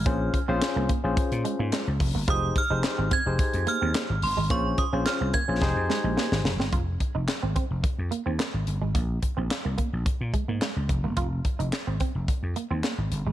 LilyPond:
<<
  \new Staff \with { instrumentName = "Synth bell" } { \time 4/4 \key f \minor \tempo 4 = 108 f'''4 r2. | ees'''8 f'''4 aes'''4 f'''4 c'''8 | des'''8 ees'''8 f'''8 aes'''2 r8 | r1 |
r1 | r1 | }
  \new Staff \with { instrumentName = "Tine electric piano" } { \time 4/4 \key f \minor <des' f' aes' c''>8 r16 <des' f' aes' c''>8. r16 <des' f' aes' c''>4. r8. | <ees' g' aes' c''>8 r16 <ees' g' aes' c''>8. r16 <ees' g' aes' c''>4. r8. | <des' f' aes' c''>8 r16 <des' f' aes' c''>8. r16 <des' f' aes' c''>16 <ees' g' aes' c''>4. r8 | r1 |
r1 | r1 | }
  \new Staff \with { instrumentName = "Clean electric guitar" } { \time 4/4 \key f \minor bes16 r8 c'16 r16 bes16 bes16 r8. aes16 bes16 aes16 r8 bes16 | f'16 r8 ees'16 r16 c'16 c'16 r8. bes16 c'16 bes16 r8 aes16 | bes16 r8 des'16 r16 c'16 bes16 r8. aes16 aes16 bes16 r8 c'16 | f'16 r8 ees'16 r16 c'16 c'16 r8. bes16 c'16 bes16 r8 aes16 |
bes16 r8 c'16 r16 bes16 bes16 r8. aes16 bes16 aes16 r8 bes16 | f'16 r8 ees'16 r16 c'16 c'16 r8. bes16 c'16 bes16 r8 aes16 | }
  \new Staff \with { instrumentName = "Slap bass" } { \clef bass \time 4/4 \key f \minor bes,,8 r16 bes,,16 r16 c,16 r16 bes,,16 r16 bes,16 r16 aes,16 r16 des,16 f,,16 g,,16 | f,,8 r16 f,,16 r16 aes,,16 r16 f,,16 r16 f,16 r16 ees,16 r16 aes,,16 g,,16 aes,,16 | bes,,8 r16 bes,,16 r16 c,16 r16 bes,,16 f,,16 f,16 r16 bes,,16 r16 aes,,16 f,,16 g,,16 | f,,8 r16 f,,16 r16 aes,,16 r16 f,,16 r16 f,16 r16 ees,16 r16 aes,,16 g,,16 aes,,16 |
bes,,8 r16 bes,,16 r16 c,16 r16 bes,,16 r16 bes,16 r16 aes,16 r16 des,16 f,,16 g,,16 | f,,8 r16 f,,16 r16 aes,,16 r16 f,,16 r16 f,16 r16 ees,16 r16 aes,,16 g,,16 aes,,16 | }
  \new DrumStaff \with { instrumentName = "Drums" } \drummode { \time 4/4 <hh bd>8 <hh bd>8 <hc hh sn>8 <hh bd>8 <hh bd>16 hh16 hh8 <hc hh sn>8 <hho bd>8 | <hh bd>8 <hh bd>8 <hc hh sn>8 <hh bd>8 <hh bd>16 hh16 hh8 <hc hh sn>8 hho8 | <hh bd>8 <hh bd>8 <hc hh sn>8 <hh bd>8 <bd sn>8 sn8 sn16 sn16 sn16 sn16 | <hh bd>8 <hh bd>8 <hc hh sn>8 <hh bd>8 <hh bd>8 hh8 <hc hh sn>8 hh8 |
<hh bd>8 <hh bd>8 <hc hh sn>8 <hh bd>8 <hh bd>8 <hh bd>8 <hc hh sn>8 <hh bd>8 | <hh bd>8 <hh bd>16 hh16 <hc hh sn>8 <hh bd>8 <hh bd>8 hh8 <hc hh sn>8 hh8 | }
>>